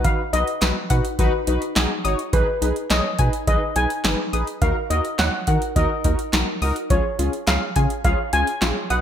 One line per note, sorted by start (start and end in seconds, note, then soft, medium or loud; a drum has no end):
0.00 0.22 D#4 medium
0.00 0.22 F#4 medium
0.00 0.22 B4 medium
0.04 0.26 D#3 medium
0.04 0.34 F5 loud
0.04 kick loud
0.04 closed hi-hat medium
0.33 0.44 B1 medium
0.33 0.55 D#4 medium
0.33 0.47 D#4 medium
0.33 0.47 F#4 medium
0.33 0.47 B4 medium
0.33 2.01 D#5 medium
0.33 closed hi-hat medium
0.48 closed hi-hat medium
0.61 0.72 B1 loud
0.61 0.76 D#4 medium
0.61 0.76 F#4 medium
0.61 0.76 B4 medium
0.61 0.83 D#5 medium
0.61 snare loud
0.61 clap medium
0.61 closed hi-hat medium
0.90 1.01 B2 loud
0.90 1.04 D#4 medium
0.90 1.04 F#4 medium
0.90 1.04 B4 medium
0.90 1.12 F#5 loud
0.90 kick loud
0.90 closed hi-hat medium
1.05 closed hi-hat medium
1.19 1.29 B1 loud
1.19 1.41 D#3 medium
1.19 1.33 D#4 loud
1.19 1.33 F#4 loud
1.19 1.33 B4 loud
1.19 kick loud
1.19 closed hi-hat medium
1.47 1.58 B1 loud
1.47 1.69 D#4 medium
1.47 1.62 D#4 medium
1.47 1.62 F#4 medium
1.47 1.62 B4 loud
1.47 closed hi-hat medium
1.62 closed hi-hat medium
1.76 1.87 B1 loud
1.76 1.98 D#4 loud
1.76 1.90 D#4 medium
1.76 1.90 F#4 medium
1.76 1.90 G#4 loud
1.76 snare loud
1.76 clap loud
1.76 closed hi-hat medium
2.04 2.15 G#1 loud
2.04 2.19 D#4 medium
2.04 2.19 F#4 medium
2.04 2.19 C#5 loud
2.04 2.26 D#6 medium
2.04 closed hi-hat medium
2.19 closed hi-hat medium
2.33 2.44 B1 loud
2.33 2.55 D#3 medium
2.33 2.47 D#4 loud
2.33 2.47 G#4 medium
2.33 2.47 B4 loud
2.33 2.92 B4 medium
2.33 kick loud
2.33 closed hi-hat medium
2.62 2.72 B1 loud
2.62 2.83 D#4 medium
2.62 2.76 D#4 medium
2.62 2.76 G#4 medium
2.62 2.76 B4 medium
2.62 closed hi-hat medium
2.76 closed hi-hat soft
2.90 3.01 B1 loud
2.90 3.04 D#4 medium
2.90 3.04 G#4 medium
2.90 3.04 C#5 medium
2.90 3.12 D#5 medium
2.90 3.46 D#5 loud
2.90 snare loud
2.90 clap medium
2.90 closed hi-hat medium
3.19 3.29 B2 loud
3.19 3.33 D#4 medium
3.19 3.33 G#4 medium
3.19 3.33 B4 medium
3.19 3.41 G#5 loud
3.19 kick loud
3.19 closed hi-hat medium
3.33 closed hi-hat medium
3.47 3.58 B1 loud
3.47 3.69 D#3 medium
3.47 3.62 D#4 loud
3.47 3.62 G#4 loud
3.47 3.62 B4 loud
3.47 3.77 D#5 loud
3.47 kick loud
3.47 closed hi-hat medium
3.76 3.86 B1 loud
3.76 3.98 D#4 medium
3.76 3.90 D#4 medium
3.76 3.90 G#4 medium
3.76 3.90 B4 medium
3.76 4.64 G#5 loud
3.76 closed hi-hat medium
3.90 closed hi-hat medium
4.04 4.15 G#1 loud
4.04 4.26 D#4 loud
4.04 4.19 D#4 medium
4.04 4.19 G#4 medium
4.04 4.19 B4 medium
4.04 snare loud
4.04 clap loud
4.04 closed hi-hat medium
4.33 4.44 A#1 loud
4.33 4.47 D#4 medium
4.33 4.47 G#4 medium
4.33 4.47 B4 medium
4.33 4.55 D#6 medium
4.33 closed hi-hat medium
4.47 closed hi-hat medium
4.62 4.72 D#2 loud
4.62 4.84 D#3 medium
4.62 4.76 D#4 loud
4.62 4.76 F#4 medium
4.62 4.76 A#4 loud
4.62 4.91 F5 loud
4.62 kick loud
4.62 closed hi-hat medium
4.90 5.01 D#2 medium
4.90 5.12 D#4 medium
4.90 5.04 D#4 medium
4.90 5.04 F#4 medium
4.90 5.04 A#4 medium
4.90 5.03 D#5 loud
4.90 closed hi-hat medium
5.05 closed hi-hat soft
5.19 5.29 D#2 loud
5.19 5.33 D#4 medium
5.19 5.33 F#4 medium
5.19 5.33 C#5 medium
5.19 5.41 D#5 medium
5.19 5.72 F#5 loud
5.19 snare loud
5.19 clap medium
5.19 closed hi-hat medium
5.47 5.58 D#3 loud
5.47 5.62 D#4 medium
5.47 5.62 F#4 medium
5.47 5.62 A#4 medium
5.47 5.69 F#5 loud
5.47 kick loud
5.47 closed hi-hat medium
5.62 closed hi-hat medium
5.76 5.86 D#2 loud
5.76 5.98 D#3 medium
5.76 5.90 D#4 loud
5.76 5.90 F#4 medium
5.76 5.90 A#4 loud
5.76 6.58 D#5 medium
5.76 kick loud
5.76 closed hi-hat medium
6.04 6.15 D#2 loud
6.04 6.26 D#4 medium
6.04 6.19 D#4 medium
6.04 6.19 F#4 medium
6.04 6.19 A#4 medium
6.04 kick medium
6.04 closed hi-hat medium
6.19 closed hi-hat medium
6.33 6.44 B1 loud
6.33 6.55 D#4 medium
6.33 6.47 D#4 medium
6.33 6.47 F#4 medium
6.33 6.47 A#4 medium
6.33 snare loud
6.33 clap loud
6.33 closed hi-hat medium
6.62 6.72 C#2 loud
6.62 6.76 D#4 medium
6.62 6.76 F#4 medium
6.62 6.76 A#4 loud
6.62 6.84 D#6 loud
6.62 open hi-hat medium
6.76 closed hi-hat medium
6.90 7.01 C#2 loud
6.90 7.12 F3 medium
6.90 7.04 C#4 loud
6.90 7.04 F4 medium
6.90 7.04 G#4 loud
6.90 7.49 C#5 medium
6.90 kick loud
6.90 closed hi-hat medium
7.19 7.29 C#2 medium
7.19 7.33 C#4 medium
7.19 7.33 F4 medium
7.19 7.41 F4 medium
7.19 7.33 G#4 medium
7.19 closed hi-hat medium
7.33 closed hi-hat soft
7.47 7.58 C#2 loud
7.47 7.61 C#4 medium
7.47 7.61 F4 medium
7.47 7.61 G#4 medium
7.47 7.69 F5 medium
7.47 8.03 F5 loud
7.47 snare loud
7.47 clap medium
7.47 closed hi-hat medium
7.76 7.87 C#3 loud
7.76 7.90 C#4 medium
7.76 7.90 F4 medium
7.76 7.90 G#4 medium
7.76 7.98 G#5 loud
7.76 kick loud
7.76 closed hi-hat medium
7.90 closed hi-hat medium
8.04 8.15 C#2 loud
8.04 8.26 F3 medium
8.04 8.19 C#4 loud
8.04 8.19 F4 medium
8.04 8.18 G#4 loud
8.04 8.31 F5 loud
8.04 kick loud
8.04 closed hi-hat medium
8.33 8.44 C#2 loud
8.33 8.47 C#4 medium
8.33 8.47 F4 medium
8.33 8.55 F4 medium
8.33 8.47 G#4 medium
8.33 8.86 G#5 loud
8.33 closed hi-hat medium
8.47 closed hi-hat medium
8.62 8.72 A#1 loud
8.62 8.76 C#4 medium
8.62 8.76 F4 medium
8.62 8.84 F4 loud
8.62 8.76 G#4 medium
8.62 snare loud
8.62 clap medium
8.62 closed hi-hat medium
8.90 9.01 B1 medium
8.90 9.01 D#4 medium
8.90 9.01 F#4 medium
8.90 9.01 B4 medium
8.90 9.01 F#5 loud
8.90 9.01 D#6 loud
8.90 closed hi-hat medium